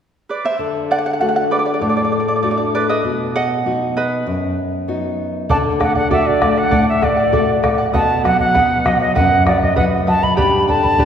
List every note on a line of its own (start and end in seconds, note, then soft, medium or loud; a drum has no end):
0.29 0.43 B4 medium
0.29 0.44 D5 medium
0.45 0.87 C5 medium
0.45 0.91 E5 medium
0.59 1.78 D3 medium
0.91 0.98 D5 medium
0.91 0.97 F#5 medium
0.98 1.05 F#5 medium
1.06 1.12 F#5 medium
1.13 1.20 F#5 soft
1.20 1.80 A3 soft
1.20 1.80 D4 soft
1.20 1.81 F#4 soft
1.20 1.27 F#5 medium
1.29 1.35 F#5 medium
1.36 1.43 F#5 medium
1.51 1.58 B4 medium
1.51 1.58 D5 medium
1.59 1.65 D5 soft
1.66 1.73 D5 soft
1.74 1.81 D5 soft
1.81 3.01 A2 medium
1.81 1.88 D5 soft
1.89 1.95 D5 soft
1.97 2.03 D5 medium
2.04 2.11 D5 soft
2.12 2.19 D5 soft
2.20 2.27 D5 soft
2.28 2.35 D5 soft
2.36 2.41 D5 soft
2.43 3.03 A3 soft
2.43 3.03 D4 soft
2.43 3.03 F#4 soft
2.43 2.50 D5 soft
2.51 2.56 D5 soft
2.58 2.65 D5 soft
2.75 2.89 B4 soft
2.75 2.89 D5 medium
2.90 3.33 B4 medium
2.90 3.35 D#5 medium
3.04 4.23 B2 medium
3.36 3.93 D#5 medium
3.36 3.96 F#5 medium
3.66 4.25 B3 soft
3.66 4.26 D#4 soft
3.66 4.26 F#4 soft
3.97 5.15 B4 soft
3.97 5.15 D#5 medium
4.27 5.46 F#2 medium
4.88 5.48 B3 soft
4.88 5.48 D#4 soft
4.88 5.48 F#4 soft
5.49 6.68 D3 medium
5.49 5.78 A4 medium
5.49 5.79 D5 medium
5.49 5.80 F#5 medium
5.49 5.57 A5 medium
5.49 bombo low medium
5.79 6.10 A3 soft
5.79 5.95 A4 soft
5.79 5.95 D5 medium
5.79 5.94 F#5 soft
5.79 5.95 F#5 medium
5.79 bombo rim soft
5.79 bombo low soft
5.95 6.10 D5 soft
5.95 6.10 F#5 soft
5.95 6.11 F#5 medium
5.95 bombo low soft
6.10 6.40 F#4 soft
6.10 6.40 A4 medium
6.10 6.41 D5 medium
6.10 6.28 E5 medium
6.10 6.42 F#5 medium
6.10 bombo low medium
6.27 6.59 D5 medium
6.41 6.71 A3 soft
6.41 6.57 A4 medium
6.41 6.56 D5 medium
6.41 6.55 F#5 medium
6.41 bombo rim medium
6.41 bombo low soft
6.56 6.70 D5 soft
6.56 6.70 F#5 soft
6.56 6.88 F#5 medium
6.71 7.90 A2 medium
6.71 7.00 A4 medium
6.71 7.01 D5 medium
6.71 7.02 F#5 medium
6.71 bombo low medium
6.89 7.06 E5 medium
7.02 7.32 A3 soft
7.02 7.17 A4 medium
7.02 7.17 D5 soft
7.02 7.64 D5 medium
7.02 7.15 F#5 medium
7.02 bombo rim soft
7.02 bombo low soft
7.17 7.32 D5 soft
7.17 7.32 F#5 soft
7.32 7.62 F#4 soft
7.32 7.62 A4 medium
7.32 7.63 D5 medium
7.32 7.63 F#5 medium
7.32 bombo low medium
7.63 7.93 A3 soft
7.63 7.78 A4 medium
7.63 7.78 D5 soft
7.63 7.77 F#5 medium
7.63 bombo rim soft
7.63 bombo low soft
7.78 7.93 D5 soft
7.78 7.93 F#5 soft
7.93 9.12 B2 medium
7.93 8.23 B4 medium
7.93 8.23 D#5 medium
7.93 8.24 F#5 medium
7.93 8.23 A5 medium
7.93 bombo low medium
8.24 8.54 F#3 soft
8.24 8.39 B4 soft
8.24 8.38 D#5 medium
8.24 8.39 F#5 medium
8.24 8.38 F#5 medium
8.24 bombo rim soft
8.24 bombo low soft
8.39 8.54 D#5 soft
8.39 8.54 F#5 soft
8.39 8.88 F#5 medium
8.39 bombo low soft
8.54 8.84 B4 medium
8.54 8.84 B4 soft
8.54 8.85 D#5 medium
8.54 8.85 F#5 medium
8.54 bombo low medium
8.85 9.15 F#3 medium
8.85 9.00 B4 soft
8.85 9.00 D#5 medium
8.85 8.99 F#5 medium
8.85 bombo rim medium
8.85 bombo low medium
9.00 9.15 D#5 medium
9.00 9.14 D#5 soft
9.00 9.15 F#5 soft
9.15 10.34 F#2 medium
9.15 9.44 B4 medium
9.15 9.45 D#5 medium
9.15 9.44 F#5 medium
9.15 9.45 F#5 medium
9.15 bombo low medium
9.45 9.76 F#3 soft
9.45 9.61 B4 medium
9.45 9.61 D5 medium
9.45 9.61 D#5 medium
9.45 9.60 F#5 medium
9.45 bombo rim soft
9.45 bombo low soft
9.61 9.76 D#5 medium
9.61 9.75 D#5 soft
9.61 9.76 F#5 soft
9.61 bombo low soft
9.76 10.05 B4 medium
9.76 10.06 B4 soft
9.76 10.06 D#5 medium
9.76 10.07 F#5 medium
9.76 9.84 F#5 medium
9.76 bombo low medium
10.07 10.37 F#3 soft
10.07 10.22 B4 medium
10.07 10.22 D#5 soft
10.07 10.21 F#5 medium
10.07 10.25 A5 medium
10.22 10.37 D#5 soft
10.22 10.36 F#5 soft
10.22 10.37 B5 medium
10.22 bombo low soft
10.37 11.05 G2 medium
10.37 10.68 G4 medium
10.37 10.67 B4 medium
10.37 10.67 D5 medium
10.37 10.66 G5 medium
10.37 10.68 B5 medium
10.37 10.66 B5 medium
10.37 bombo low medium
10.68 10.98 D3 soft
10.68 10.83 B4 soft
10.68 10.82 D5 medium
10.68 10.83 G5 soft
10.68 11.05 A5 medium
10.68 10.82 B5 medium
10.68 bombo low soft
10.83 10.98 B4 soft
10.83 10.98 D5 soft
10.83 10.99 B5 soft
10.83 bombo low soft
10.98 11.05 D4 soft
10.98 11.05 G4 medium
10.98 11.05 B4 medium
10.98 11.05 D5 medium
10.98 11.05 G5 medium
10.98 11.05 B5 medium
10.98 bombo low medium